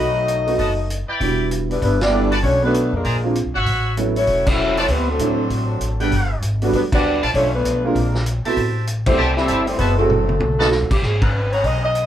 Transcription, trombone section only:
Already playing: F#3 A3 D#4
1.69 D3 G3 B3
1.81 D3 G3 B3
2.00 G3 B3 D4
2.42 C#4
2.62 D3 F#3 B3
2.94 D3 F3 A#3
4.16 E3 F#3 C#4
4.46 F#3 C#4 E4
4.78 E3 F#3 C#4
4.90 B3
5.09 C3 F#3 A3
6.63 D3 F#3 B3
6.74 D3 F#3 B3
6.92 G3 B3 D4
7.34 C#4
7.54 D3 F3 B3
7.85 D3 F3 A#3
9.06 E3 G3 C4
9.36 G3 C4 E4
9.67 E3 G3 C4
9.77 B3
9.96 C3 E3 A3

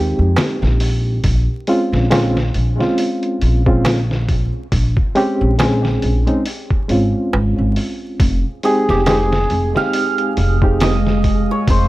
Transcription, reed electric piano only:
Already playing: G#3 C4 D#4 G4
1.68 G#3 C4 C#4 F4
2.11 G#3 C4 C#4 F4
2.79 G#3 C4 C#4 F4
3.66 G#3 C4 C#4 F4
5.15 G#3 C4 C#4 G4
5.58 G#3 C4 C#4 G#4
6.27 G#3 C4 C#4 D#4
6.88 G#3 C4 C#4 F4
8.63 G#3 C4 D#4 G4
9.07 G#3 C4 D#4 G4
9.75 G#3 C4 D#4 G4
10.62 G#3 C4 D#4 G4

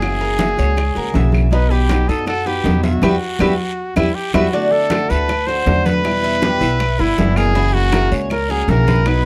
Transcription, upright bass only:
Already playing: F#1
0.58 C#2
0.96 C#2
1.15 B1
2.09 F#2
2.65 E2
3.02 E2
3.41 E2
3.96 E2
4.34 E2
5.10 D2
5.67 E2
6.61 B1
6.99 G1
7.18 F#1
8.12 C#2
8.68 B1

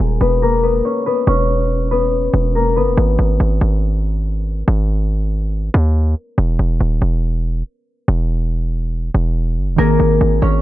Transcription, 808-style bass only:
0.00 D#1
0.21 E1
1.27 E1
2.34 E1
2.76 G1
2.87 E1
2.97 G#1
3.19 G#1
3.40 G#1
3.61 G#1
4.68 G#1
5.74 D#2
6.38 E1
6.59 E1
6.80 D#1
7.02 E1
8.08 E1
9.15 E1
9.57 G1
9.68 E1
9.78 G#1
10.00 G#1
10.21 G#1
10.42 G#1

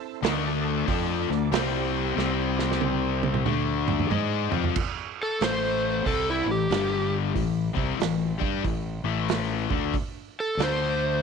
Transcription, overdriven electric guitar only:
0.22 D3 A3 D4
0.86 F3 C4 F4
1.29 D3 A3
1.52 C3 G3 C4
2.16 C3 G3 C4
3.45 D3 A3 D4
4.10 G#3 D#4 G#4
4.51 F3 C4 F4
5.41 A2 E3 A3
6.05 C3 G3 C4
6.48 A2 E3
6.70 G2 D3 G3
7.35 A2 E3
7.75 C3 G3 C4
7.99 A2 E3
8.39 G3 D4 G4
8.63 A2 E3
9.04 A2 E3 A3
9.70 D3 A3 D4
10.58 D3 A3 D4

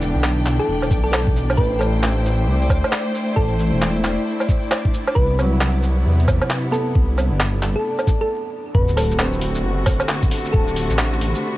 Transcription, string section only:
Already playing: E3 B3 D4 G5
1.59 A3 E4 C5
5.16 C3 B3
8.75 C3 D3 A3 F#4

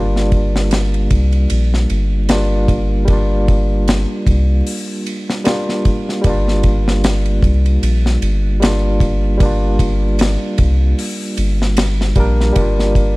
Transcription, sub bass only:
Already playing: G1
1.11 C2
1.51 A#1
1.90 G1
4.27 C2
6.25 G1
7.42 C2
7.82 A#1
8.22 G1
10.59 C2
11.38 G1
12.16 A#1
12.56 G1

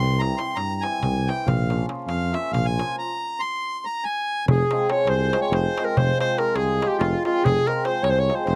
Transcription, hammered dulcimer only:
Already playing: E3 G3
0.20 E3 G3 C4 E4
0.39 E3 G3 C4 E4
0.83 E3 G3 C4 E4
1.28 E3 G3 C4 E4
1.69 F3 A#3 C#4 F4
1.89 F3 A#3 C#4 F4
2.32 F3 A#3 C#4 F4
2.78 F3 A#3 C#4 F4
4.71 F3 G#3 C4 F4
4.90 F3 G#3 C4 F4
5.32 F3 G#3 C4 F4
5.78 F3 G#3 C4 F4
6.19 F3 G#3 C4 F4
6.38 F3 G#3 C4 F4
6.81 F3 G#3 C4 F4
7.26 F3 G#3 C4 F4
7.67 F3 G#3 C4 F4
7.85 F3 G#3 C4 F4
8.28 F3 G#3 C4 F4

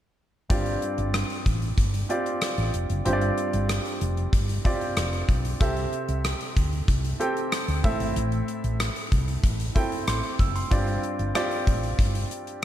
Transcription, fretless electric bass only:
0.50 G1
0.98 G1
1.46 A1
1.78 G1
2.58 A1
2.74 F1
2.90 F#1
3.05 G1
3.53 G1
4.01 F1
4.33 G1
4.97 F1
5.29 B1
5.61 C2
6.08 C2
6.57 D2
6.88 C2
7.68 D2
7.84 A1
8.00 G#1
8.16 A1
8.64 A1
9.12 C2
9.43 A1
10.08 A1
10.39 F#1
10.71 G1
11.19 G1
11.67 A1
11.99 G1

